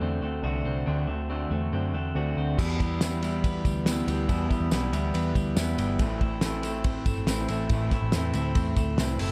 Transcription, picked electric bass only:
0.01 E2
0.22 D2
0.43 C2
0.65 C2
0.87 D2
1.08 D2
1.51 E2
1.73 F#2
1.94 E2
2.15 D2
2.37 D2
2.59 E2
3.65 D2
4.07 D2
4.29 E2
4.60 E2
4.72 B1
4.93 D2
5.15 E2
5.35 D2
5.56 E2
5.78 G1
5.99 A1
7.06 G1
7.28 A1
7.49 A1
7.70 A1
8.02 A1
8.13 E2
8.34 D2
8.55 E2
8.76 D2
8.98 C2
9.19 F#1

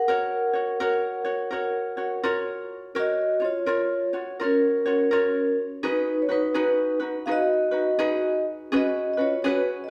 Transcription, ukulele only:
Already playing: C#4
0.08 F#4 A#4 C#5
0.53 F#4 C#5
0.80 F#4 A#4 C#5
1.25 F#4 C#5
1.51 F#4 A#4 C#5
1.97 F#4 C#5
2.23 F4 F#4 A#4 C#5
2.95 F#4 A#4 C#5
3.40 F4 C#5
3.66 F4 A#4 C#5
4.13 F4 F#4 C#5
4.40 F4 F#4 A#4 C#5
4.86 F4 F#4 C#5
5.11 F4 F#4 A#4 C#5
5.83 D#4 F#4 G#4 B4
6.29 D#4 F#4 B4
6.54 D#4 F#4 G#4 B4
7.00 D#4 F#4 B4
7.27 D#4 F#4 G#4 B4
7.71 D#4 F#4 B4
7.99 D#4 F#4 G#4 B4
8.72 C#4 F#4 G#4 B4
9.17 C#4 F#4 B4
9.44 C#4 F#4 G#4 B4

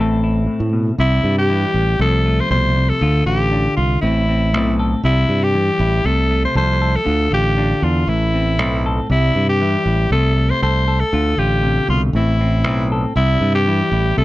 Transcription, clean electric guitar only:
Already playing: A2
0.00 A3 C4 E4 A4
0.24 E4
0.47 A2
0.73 B2
0.99 C3 G3
1.25 G3
1.49 E3 E4
1.75 muted clean electric guitar stroke
2.00 C3 F3 A3
2.26 A3
2.51 B2
2.76 C3
3.02 D3 F4
3.27 F4
3.52 D4 F4
4.03 A2 C4
4.29 C4
4.53 A3 C4
4.79 A4
5.04 C3 G3
5.29 G3
5.54 E3, muted clean electric guitar stroke
5.80 E4
6.05 C3 A3
6.31 A3
6.55 F3 A4
6.82 A4
7.05 D3 F4
7.32 F4
7.57 D4 F4
7.84 D4
8.09 A2, muted clean electric guitar stroke
8.34 C4
8.59 A3 C4
8.86 A4
9.10 C3 G3
9.37 G3
9.61 E3 E4
9.87 E4
10.12 C3 A3
10.37 A3
10.63 A4, muted clean electric guitar stroke
10.88 A4
11.13 D3 F4
11.39 F4
11.63 C3
11.89 B2
12.15 A2 C4
12.41 C4
12.66 C4
12.92 A4
13.16 C3 G3
13.42 G3
13.67 E3 E4
13.93 E4
14.17 C3 A3

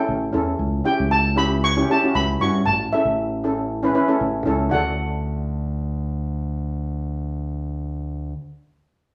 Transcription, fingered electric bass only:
0.08 A1
0.34 E2
0.59 C#2
1.00 C#2
2.15 C#2
2.40 G2
2.66 A1
3.05 A1
4.21 A1
4.47 C#2
4.72 D2

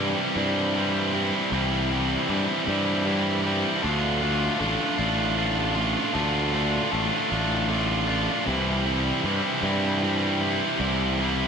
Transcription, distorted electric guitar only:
Already playing: C3 E3
0.00 G3 C4 E4
0.36 G3 C4 E4
0.75 E3 G3 C4 E4
1.13 G3 C4 E4
1.51 C3 E3 G3 C4 E4
1.90 G3 C4 E4
2.29 E3 G3 C4 E4
2.67 G3 C4 E4
3.05 E3 G3 C4 E4
3.45 G3 C4 E4
3.82 D3 A3 D4 F4
4.21 A3 D4 F4
4.60 D3 A3 D4 F4
4.98 A3 D4 F4
5.36 D3 A3 D4 F4
5.75 A3 D4 F4
6.13 D3 A3 D4 F4
6.52 A3 D4 F4
6.91 D3 A3 D4 F4
7.30 A3 D4 F4
7.69 D3 A3 D4 F4
8.07 A3 D4 F4
8.46 C3 E3 G3 C4 E4
8.86 G3 C4 E4
9.24 E3 G3 C4 E4
9.62 G3 C4 E4
10.02 E3 G3 C4 E4
10.41 G3 C4 E4
10.80 C3 E3 G3 C4 E4
11.19 G3 C4 E4

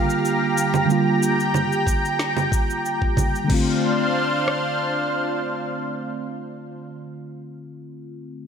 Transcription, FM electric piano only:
Already playing: D3 G3 A#3 F4
0.86 D3 G3
0.90 A#3 F4
3.44 D3 A3
3.51 C4 F4

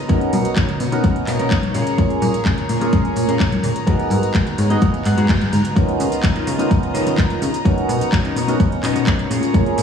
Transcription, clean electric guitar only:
0.09 C#4 D#4 A#4
0.56 C#4 D#4 A#4
0.80 muted clean electric guitar stroke
1.03 C#4 D#4 A#4
1.27 F5, muted clean electric guitar stroke
1.39 C#4 D#4 A#4
1.51 D#5
1.74 C#4 G#4 A#4
2.45 C#4 G#4 A#4
2.69 muted clean electric guitar stroke
2.93 C#4 G#4 A#4
3.16 muted clean electric guitar stroke
3.28 C#4 G#4 A#4
3.75 muted clean electric guitar stroke
3.87 B3 F#4 A#4
4.34 B3 F#4 A#4
4.58 C#5, muted clean electric guitar stroke
4.70 D#5
4.81 B3 F#4 A#4 F5
5.05 F#5, muted clean electric guitar stroke
5.17 B3 F#4 G#4
5.29 G#5
5.53 A#5
5.65 muted clean electric guitar stroke
6.00 muted clean electric guitar stroke
6.12 muted clean electric guitar stroke
6.35 B3 D#4 F4 A#4
6.59 muted clean electric guitar stroke
6.94 B3 D#4 F4 A#4
7.89 muted clean electric guitar stroke
8.01 muted clean electric guitar stroke
8.25 B3 C#4 D#4 A#4
8.48 muted clean electric guitar stroke
8.83 B3 C#4 D#4 A#4
9.30 C#4 F4 G#4 A#4
9.78 muted clean electric guitar stroke

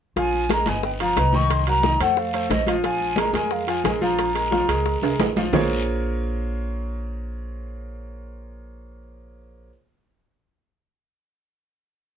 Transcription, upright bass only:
0.16 A#1
0.66 G1
1.16 C2
2.00 F2
2.50 A#1
3.33 F2
3.84 A#1
4.69 C#2
5.02 C2
5.19 A#1
5.53 A#1

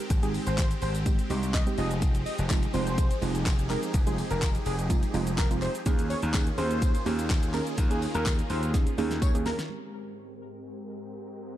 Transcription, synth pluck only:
0.23 G#3 C4 D#4 G4
1.06 G#3 C4 D#4 G4
1.30 G#3 C4 D#4 G4
1.67 G#3 C4 D#4 G4
1.78 G#3 C4 D#4 F4
2.50 G#3 C4 D#4 F4
2.74 G#3 C4 D#4 F4
3.22 G#3 C4 D#4 F4
3.70 G#3 C4 D#4 G#4
4.06 G#3 C4 D#4 F4
4.90 G#3 C4 D#4 F4
5.14 G#3 C4 D#4 F4
5.50 G#3 C4 D#4 F4
5.86 A#3 C#4 D#4 G#4
6.34 A#3 C#4 D#4 G#4
6.58 A#3 C#4 D#4 G#4
7.06 A#3 C#4 D#4 G4
7.54 A#3 C#4 D#4 G#4
7.90 A#3 C#4 D#4 G#4
8.74 A#3 C#4 D#4 G#4
8.98 A#3 C#4 D#4 G#4
9.34 A#3 C#4 D#4 G#4
9.70 G#3 C4 G4

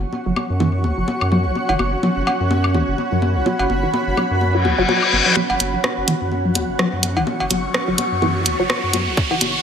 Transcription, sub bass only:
0.26 F#1
0.50 F#2
0.84 C#2
0.98 F#1
1.21 F#2
1.45 A1
1.69 F#1
1.79 F#1
2.16 F#1
2.40 F#2
2.74 C#2
2.88 F#1
3.12 F#2
3.36 A1
3.59 F#1
3.70 F#1
4.07 F#1
4.31 F#2
4.65 C#2
4.78 F#1
5.13 F#1
5.50 F#1
5.60 F#1
5.97 F#1
6.21 F#2
6.55 C#2
6.69 F#1
6.93 F#2
7.16 A1
7.40 F#1
7.51 F#1
7.88 F#1
8.12 F#2
8.46 C#2
8.59 F#1
8.83 F#2
9.07 A1
9.31 F#1
9.41 F#1

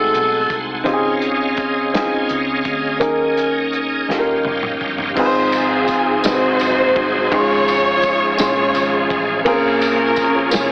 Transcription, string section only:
5.53 C4 F4 G#4
6.26 D#4 F#4 C5
7.34 F4 C#5
8.40 F4 C#5
9.82 C#4 F4 A#4
10.53 F4 G#4 C#5

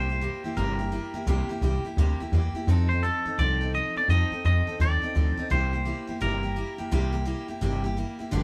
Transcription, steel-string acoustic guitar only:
0.09 A#3 E4 G4
0.21 G3 A#3 E4 G4
0.44 A#3 E4 G4
0.57 C3 G3 A#3 E4 G4
0.79 A#3 E4 G4
0.92 G3 A#3 E4 G4
1.14 A#3 E4 G4
1.27 C3 G3 A#3 E4 G4
1.49 A#3 E4 G4
1.62 G3 A#3 E4 G4
1.85 A#3 E4 G4
1.98 C3 G3 A#3 E4 G4
2.20 A#3 E4 G4
2.33 G3 A#3 E4 G4
2.55 A#3 E4 G4
2.68 F3 C4 D#4 A4
2.90 C4 D#4 A4
3.03 F3 C4 D#4 A4
3.26 C4 D#4 A4
3.39 F3 C4 D#4 A4
3.61 C4 D#4 A4
3.74 F3 C4 D#4 A4
3.97 C4 D#4 A4
4.09 F3 C4 D#4 A4
4.32 C4 D#4 A4
4.45 F3 C4 D#4 A4
4.67 C4 D#4 A4
4.80 F3 C4 D#4 A4
5.02 C4 D#4 A4
5.15 F3 C4 D#4 A4
5.37 C4 D#4 A4
5.50 C3 G3 A#3 E4 G4
5.73 A#3 E4 G4
5.85 G3 A#3 E4 G4
6.07 A#3 E4 G4
6.20 C3 G3 A#3 E4 G4
6.43 A#3 E4 G4
6.56 G3 A#3 E4 G4
6.78 A#3 E4 G4
6.91 C3 G3 A#3 E4 G4
7.12 A#3 E4 G4
7.25 G3 A#3 E4 G4
7.48 A#3 E4 G4
7.61 C3 G3 A#3 E4 G4
7.84 A#3 E4 G4
7.97 G3 A#3 E4 G4
8.19 A#3 E4 G4
8.31 G2 D3 F3 B3 D4 G4

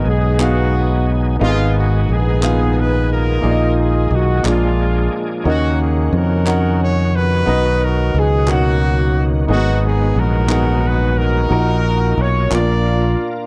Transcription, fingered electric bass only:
0.05 B1
1.41 G#1
2.09 A#1
3.44 A#1
4.11 B1
4.44 A#1
5.45 D#2
6.13 F2
7.47 B1
8.14 C#2
9.48 G#1
10.16 A#1
11.51 A#1
12.17 B1
12.51 A#1

